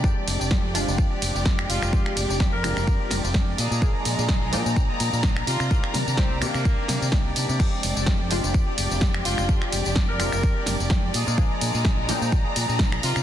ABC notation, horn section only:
X:1
M:4/4
L:1/16
Q:"Swing 16ths" 1/4=127
K:Fdor
V:1 name="Horn section"
z12 z2 F2- | F2 z3 B6 z4 z | z12 z2 F2- | F2 z2 C2 B,6 z4 |
z12 z2 F2- | F2 z3 B6 z4 z | z12 z2 F2 |]